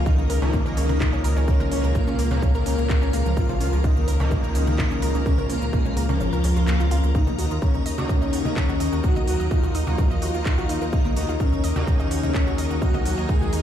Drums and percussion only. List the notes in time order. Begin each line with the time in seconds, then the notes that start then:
0.06 kick, shaker
0.19 shaker
0.30 open hi-hat, shaker
0.42 low conga, shaker
0.53 kick, shaker
0.66 shaker
0.77 open hi-hat, shaker
0.89 low conga, shaker
1.01 kick, clap, shaker
1.13 shaker
1.24 open hi-hat, shaker
1.37 shaker
1.48 kick, shaker
1.60 low conga, shaker
1.72 open hi-hat, shaker
1.84 shaker
1.95 kick, shaker
2.07 shaker
2.19 open hi-hat, shaker
2.31 low conga, shaker
2.42 kick, shaker
2.55 shaker
2.66 open hi-hat, shaker
2.78 shaker
2.90 kick, clap, shaker
3.02 shaker
3.13 open hi-hat, shaker
3.26 shaker
3.37 kick, shaker
3.49 low conga, shaker
3.61 open hi-hat, shaker
3.73 shaker
3.84 kick, shaker
3.96 shaker
4.08 open hi-hat, shaker
4.20 low conga, shaker
4.31 kick, shaker
4.44 shaker
4.55 open hi-hat, shaker
4.67 low conga, shaker
4.79 kick, clap, shaker
4.91 shaker
5.02 open hi-hat, shaker
5.15 shaker
5.26 kick, shaker
5.38 low conga, shaker
5.50 open hi-hat, shaker
5.62 shaker
5.73 kick, shaker
5.86 shaker
5.97 open hi-hat, shaker
6.09 low conga, shaker
6.20 shaker
6.33 shaker
6.44 open hi-hat, shaker
6.56 shaker
6.68 clap, shaker
6.80 shaker
6.91 open hi-hat, shaker
7.04 shaker
7.15 kick, shaker
7.27 low conga, shaker
7.39 open hi-hat, shaker
7.51 shaker
7.62 kick, shaker
7.75 shaker
7.86 open hi-hat, shaker
7.98 low conga, shaker
8.09 kick, shaker
8.22 shaker
8.33 open hi-hat, shaker
8.45 low conga, shaker
8.57 kick, clap, shaker
8.69 shaker
8.80 open hi-hat, shaker
8.93 shaker
9.04 kick, shaker
9.16 low conga, shaker
9.28 open hi-hat, shaker
9.40 shaker
9.51 kick, shaker
9.63 shaker
9.75 open hi-hat, shaker
9.87 low conga, shaker
9.98 kick, shaker
10.11 shaker
10.22 open hi-hat, shaker
10.34 shaker
10.46 kick, clap, shaker
10.58 shaker
10.69 open hi-hat, shaker
10.82 shaker
10.93 kick, shaker
11.05 low conga, shaker
11.17 open hi-hat, shaker
11.29 shaker
11.40 kick, shaker
11.52 shaker
11.64 open hi-hat, shaker
11.76 low conga, shaker
11.87 kick, shaker
12.00 shaker
12.11 open hi-hat, shaker
12.23 low conga, shaker
12.35 kick, clap, shaker
12.47 shaker
12.58 open hi-hat, shaker
12.71 shaker
12.82 kick, shaker
12.94 low conga, shaker
13.06 open hi-hat, shaker
13.18 shaker
13.29 kick, shaker
13.41 shaker
13.53 open hi-hat, shaker